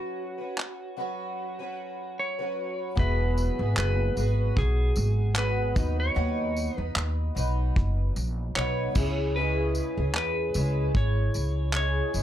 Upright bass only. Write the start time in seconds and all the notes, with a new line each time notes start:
2.97 E1
3.59 G#1
3.77 F#1
4.17 G#1
4.56 B1
4.97 G#1
5.76 D#2
6.16 D#2
6.78 E2
6.96 D#2
7.36 B1
7.76 F#1
8.16 A#1
8.56 B1
8.96 C#2
9.97 C#2
10.16 E2
10.55 C#2
10.95 G#1
11.35 C#2
12.14 F#1